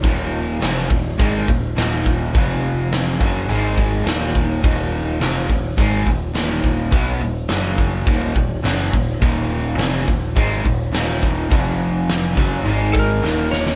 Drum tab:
HH |o---o---o---o---|o---o---o---o---|o---o---o---o---|o---o---o---o---|
SD |----o-------o---|----o-------o---|----o-------o---|----o-------o---|
BD |o-----o-o-o---o-|o-----o---o---o-|o-----o-o-o---o-|o-----o-o-o---o-|

HH |o---o---o---o---|o---o---o-------|
SD |----o-------o---|----o-------o-oo|
BD |o-----o-o-o---o-|o-----o---o-----|